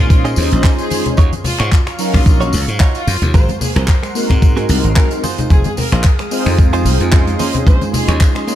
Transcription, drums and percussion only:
0.10 kick loud
0.10 closed hi-hat medium
0.10 tambourine soft
0.25 closed hi-hat soft
0.25 tambourine soft
0.36 open hi-hat loud
0.36 tambourine medium
0.36 high conga medium
0.51 closed hi-hat medium
0.51 tambourine soft
0.64 kick loud
0.64 clap loud
0.64 closed hi-hat medium
0.64 tambourine soft
0.79 closed hi-hat medium
0.79 tambourine soft
0.90 open hi-hat loud
0.90 tambourine medium
0.90 high conga medium
1.06 closed hi-hat medium
1.06 tambourine soft
1.06 low conga medium
1.17 kick loud
1.17 closed hi-hat medium
1.17 tambourine soft
1.33 closed hi-hat medium
1.33 tambourine soft
1.33 high conga loud
1.44 open hi-hat loud
1.44 tambourine medium
1.44 low conga medium
1.59 finger snap medium
1.59 clap soft
1.59 tambourine soft
1.72 kick loud
1.72 clap loud
1.72 closed hi-hat medium
1.72 tambourine soft
1.72 high conga medium
1.87 finger snap medium
1.87 closed hi-hat soft
1.87 tambourine soft
1.99 open hi-hat loud
1.99 tambourine medium
2.14 finger snap medium
2.14 kick medium
2.14 open hi-hat medium
2.14 tambourine soft
2.14 high conga medium
2.26 kick loud
2.26 closed hi-hat medium
2.26 tambourine soft
2.41 closed hi-hat soft
2.41 tambourine soft
2.53 open hi-hat loud
2.53 tambourine medium
2.53 high conga medium
2.68 closed hi-hat medium
2.68 tambourine soft
2.80 kick loud
2.80 clap loud
2.80 closed hi-hat medium
2.80 tambourine soft
2.95 closed hi-hat medium
2.95 tambourine soft
3.07 open hi-hat loud
3.07 tambourine medium
3.07 high conga medium
3.22 closed hi-hat medium
3.22 tambourine soft
3.22 low conga medium
3.34 kick loud
3.34 closed hi-hat medium
3.34 tambourine soft
3.49 closed hi-hat soft
3.49 tambourine soft
3.49 high conga loud
3.61 open hi-hat loud
3.61 tambourine medium
3.61 low conga loud
3.76 finger snap medium
3.76 closed hi-hat medium
3.76 tambourine soft
3.88 kick loud
3.88 clap loud
3.88 closed hi-hat medium
3.88 tambourine soft
3.88 high conga medium
4.03 finger snap medium
4.03 closed hi-hat soft
4.03 tambourine soft
4.15 open hi-hat loud
4.15 tambourine medium
4.30 finger snap medium
4.30 kick medium
4.30 closed hi-hat medium
4.30 tambourine soft
4.30 high conga loud
4.42 kick loud
4.42 closed hi-hat medium
4.42 tambourine soft
4.57 closed hi-hat medium
4.57 tambourine soft
4.69 open hi-hat loud
4.69 tambourine medium
4.69 high conga medium
4.84 closed hi-hat medium
4.84 tambourine soft
4.96 kick loud
4.96 clap loud
4.96 closed hi-hat medium
4.96 tambourine soft
5.11 closed hi-hat soft
5.11 tambourine soft
5.24 open hi-hat loud
5.24 tambourine medium
5.24 high conga medium
5.38 closed hi-hat medium
5.38 tambourine soft
5.38 low conga medium
5.50 kick loud
5.50 closed hi-hat medium
5.50 tambourine soft
5.64 closed hi-hat soft
5.64 tambourine soft
5.64 high conga loud
5.77 open hi-hat loud
5.77 tambourine medium
5.77 low conga medium
5.92 finger snap medium
5.92 closed hi-hat medium
5.92 tambourine soft
6.04 kick loud
6.04 clap loud
6.04 closed hi-hat medium
6.04 tambourine soft
6.04 high conga medium
6.19 finger snap medium
6.19 closed hi-hat soft
6.19 tambourine soft
6.31 open hi-hat loud
6.31 tambourine medium
6.46 finger snap medium
6.46 open hi-hat medium
6.46 tambourine soft
6.46 high conga medium
6.58 kick loud
6.58 closed hi-hat medium
6.58 tambourine soft
6.73 closed hi-hat soft
6.73 tambourine soft
6.85 open hi-hat loud
6.85 tambourine medium
6.85 high conga medium
7.00 closed hi-hat medium
7.00 tambourine soft
7.13 kick loud
7.13 clap loud
7.13 closed hi-hat medium
7.13 tambourine soft
7.27 closed hi-hat medium
7.27 tambourine soft
7.39 open hi-hat loud
7.39 tambourine medium
7.39 high conga medium
7.54 closed hi-hat medium
7.54 tambourine soft
7.54 low conga medium
7.67 kick loud
7.67 closed hi-hat medium
7.67 tambourine soft
7.81 closed hi-hat soft
7.81 tambourine soft
7.81 high conga loud
7.94 open hi-hat loud
7.94 tambourine medium
7.94 low conga loud
8.09 finger snap medium
8.09 closed hi-hat medium
8.09 tambourine soft
8.20 kick loud
8.20 clap loud
8.20 closed hi-hat medium
8.20 tambourine soft
8.20 high conga medium
8.35 finger snap medium
8.35 closed hi-hat soft
8.35 tambourine soft
8.48 open hi-hat loud
8.48 tambourine medium

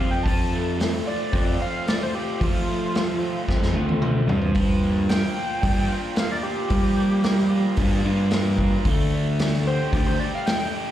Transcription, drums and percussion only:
0.26 kick loud
0.26 open hi-hat medium
0.80 snare loud
0.80 open hi-hat medium
1.33 kick loud
1.33 open hi-hat medium
1.88 snare loud
1.88 open hi-hat medium
2.41 kick loud
2.41 open hi-hat medium
2.95 snare loud
2.95 open hi-hat medium
3.49 kick loud
3.49 snare medium
3.63 snare medium
3.89 high tom medium
4.02 mid tom medium
4.29 floor tom medium
4.42 floor tom medium
4.55 kick loud
4.55 open hi-hat medium
5.09 snare loud
5.09 open hi-hat medium
5.63 kick loud
5.63 open hi-hat medium
6.16 snare loud
6.16 open hi-hat medium
6.70 kick loud
6.70 open hi-hat medium
7.24 snare loud
7.24 open hi-hat medium
7.38 snare soft
7.77 kick loud
7.77 open hi-hat medium
8.31 snare loud
8.31 open hi-hat medium
8.58 kick medium
8.85 kick loud
8.85 open hi-hat medium
9.39 snare loud
9.39 open hi-hat medium
9.53 snare soft
9.93 kick loud
9.93 open hi-hat medium
10.47 snare loud
10.47 open hi-hat medium

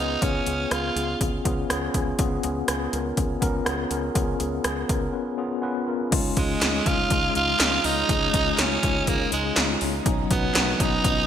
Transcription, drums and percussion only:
0.22 kick loud
0.22 closed hi-hat medium
0.47 closed hi-hat medium
0.71 cross-stick loud
0.71 closed hi-hat medium
0.97 closed hi-hat medium
1.21 kick medium
1.21 closed hi-hat medium
1.45 kick medium
1.45 closed hi-hat medium
1.70 cross-stick loud
1.70 closed hi-hat medium
1.94 kick medium
1.94 closed hi-hat medium
2.19 kick loud
2.19 closed hi-hat medium
2.43 closed hi-hat medium
2.68 cross-stick loud
2.68 closed hi-hat medium
2.93 closed hi-hat medium
3.17 kick medium
3.17 closed hi-hat medium
3.42 kick medium
3.42 closed hi-hat medium
3.66 cross-stick loud
3.66 closed hi-hat medium
3.91 closed hi-hat medium
4.15 kick loud
4.15 closed hi-hat medium
4.40 closed hi-hat medium
4.64 cross-stick loud
4.64 closed hi-hat medium
4.89 kick medium
4.89 closed hi-hat medium
6.12 kick loud
6.12 closed hi-hat medium
6.12 crash medium
6.37 kick medium
6.37 closed hi-hat medium
6.61 snare loud
6.61 clap medium
6.61 closed hi-hat medium
6.86 kick medium
6.86 closed hi-hat medium
7.10 kick medium
7.10 closed hi-hat medium
7.35 closed hi-hat medium
7.60 snare loud
7.60 clap medium
7.60 closed hi-hat medium
7.84 open hi-hat medium
8.09 kick loud
8.09 closed hi-hat medium
8.34 kick medium
8.34 closed hi-hat medium
8.58 snare loud
8.58 clap medium
8.58 closed hi-hat medium
8.83 kick medium
8.83 closed hi-hat medium
9.07 kick medium
9.07 closed hi-hat medium
9.32 closed hi-hat medium
9.56 snare loud
9.56 clap medium
9.56 closed hi-hat medium
9.81 open hi-hat medium
10.06 kick loud
10.06 closed hi-hat medium
10.31 kick medium
10.31 closed hi-hat medium
10.55 snare loud
10.55 clap medium
10.55 closed hi-hat medium
10.80 kick medium
10.80 closed hi-hat medium
11.04 kick medium
11.04 closed hi-hat medium

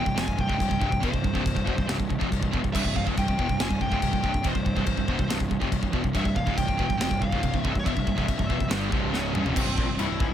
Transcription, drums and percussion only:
0.06 kick medium
0.17 snare loud
0.17 china medium
0.28 kick medium
0.39 kick medium
0.49 kick medium
0.60 kick medium
0.60 china medium
0.71 kick medium
0.81 kick loud
0.92 kick medium
1.03 kick medium
1.03 china medium
1.14 kick medium
1.24 kick medium
1.35 kick medium
1.46 kick loud
1.46 china medium
1.56 kick medium
1.67 kick medium
1.78 kick medium
1.89 snare loud
1.89 china medium
2.00 kick medium
2.10 kick medium
2.21 kick medium
2.32 kick medium
2.32 china medium
2.43 kick medium
2.53 kick loud
2.64 kick medium
2.75 kick loud
2.75 crash loud
2.75 china medium
2.85 kick medium
2.96 kick medium
3.07 kick medium
3.18 kick loud
3.18 china medium
3.28 kick medium
3.39 kick medium
3.49 kick medium
3.60 snare loud
3.60 china medium
3.71 kick medium
3.81 kick medium
3.92 kick medium
4.02 kick medium
4.02 china medium
4.13 kick medium
4.24 kick medium
4.34 kick medium
4.44 kick medium
4.44 china medium
4.55 kick medium
4.66 kick medium
4.77 kick medium
4.86 kick loud
4.86 china medium
4.97 kick medium
5.08 kick medium
5.19 kick medium
5.30 snare loud
5.30 china medium
5.40 kick medium
5.51 kick medium
5.62 kick medium
5.72 kick medium
5.72 china medium
5.83 kick medium
5.93 kick medium
6.04 kick medium
6.15 kick medium
6.15 china medium
6.25 kick medium
6.36 kick medium
6.47 kick medium
6.58 kick loud
6.58 china medium
6.68 kick medium
6.79 kick medium
6.90 kick medium
7.01 snare loud
7.01 china medium
7.11 kick medium
7.22 kick medium
7.32 kick medium
7.43 kick medium
7.43 china medium
7.54 kick medium
7.65 kick medium
7.75 kick medium
7.86 kick loud
7.86 china medium
7.97 kick medium
8.07 kick medium
8.18 kick medium
8.28 kick loud
8.28 china medium
8.39 kick medium
8.50 kick medium
8.60 kick medium
8.71 snare loud
8.71 china medium
8.92 kick loud
9.14 snare medium
9.35 mid tom loud
9.46 floor tom loud
9.56 kick loud
9.56 crash loud
9.56 china medium
9.78 kick loud
9.99 china medium
10.20 kick loud

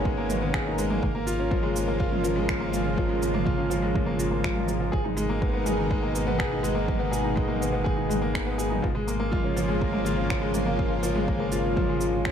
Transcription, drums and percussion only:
0.05 kick loud
0.30 mid tom medium
0.30 shaker medium
0.54 finger snap medium
0.54 kick loud
0.78 shaker medium
0.90 mid tom medium
1.03 kick loud
1.27 shaker medium
1.51 kick loud
1.51 mid tom medium
1.76 shaker medium
2.00 kick loud
2.12 mid tom medium
2.24 shaker medium
2.49 finger snap medium
2.49 kick loud
2.74 mid tom medium
2.74 shaker medium
2.98 kick loud
3.23 shaker medium
3.35 mid tom medium
3.47 kick loud
3.71 shaker medium
3.95 kick loud
3.95 mid tom medium
4.20 shaker medium
4.44 finger snap medium
4.44 kick loud
4.56 mid tom medium
4.68 shaker medium
4.93 kick loud
5.05 mid tom medium
5.17 shaker medium
5.42 kick loud
5.66 mid tom medium
5.66 shaker medium
5.91 kick loud
6.15 shaker medium
6.28 mid tom medium
6.40 finger snap medium
6.40 kick loud
6.64 shaker medium
6.88 kick loud
6.88 mid tom medium
7.13 shaker medium
7.37 kick loud
7.50 mid tom medium
7.62 shaker medium
7.86 kick loud
8.11 mid tom medium
8.11 shaker medium
8.35 finger snap medium
8.35 kick loud
8.59 shaker medium
8.72 mid tom medium
8.84 kick loud
9.08 shaker medium
9.32 kick loud
9.32 mid tom medium
9.57 shaker medium
9.81 kick loud
9.94 mid tom medium
10.06 shaker medium
10.30 finger snap medium
10.30 kick loud
10.54 mid tom medium
10.54 shaker medium
10.79 kick loud
11.03 shaker medium
11.16 mid tom medium
11.28 kick loud
11.52 shaker medium
11.76 kick loud
11.76 mid tom medium
12.01 shaker medium
12.25 finger snap medium
12.25 kick loud

